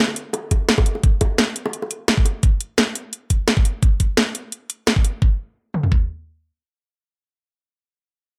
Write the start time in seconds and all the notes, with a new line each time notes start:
0.08 high bongo
0.16 closed hi-hat
0.33 closed hi-hat, high bongo
0.51 kick, closed hi-hat, high bongo
0.69 snare, closed hi-hat
0.78 kick, high bongo
0.86 closed hi-hat
0.95 high bongo
1.03 kick, closed hi-hat
1.21 kick, closed hi-hat, high bongo
1.38 snare, closed hi-hat, high bongo
1.56 closed hi-hat
1.66 high bongo
1.73 closed hi-hat
1.82 high bongo
1.91 closed hi-hat
2.08 snare, closed hi-hat, high bongo
2.17 kick
2.25 closed hi-hat, high bongo
2.43 kick, closed hi-hat
2.60 closed hi-hat
2.78 snare, closed hi-hat
2.95 closed hi-hat
3.13 closed hi-hat
3.30 kick, closed hi-hat
3.48 snare, closed hi-hat
3.57 kick
3.65 closed hi-hat
3.83 kick, closed hi-hat
4.00 kick, closed hi-hat
4.17 snare, closed hi-hat
4.35 closed hi-hat
4.52 closed hi-hat
4.70 closed hi-hat
4.87 snare, closed hi-hat
4.96 kick
5.05 closed hi-hat
5.22 kick
5.74 mid tom
5.83 floor tom
5.92 kick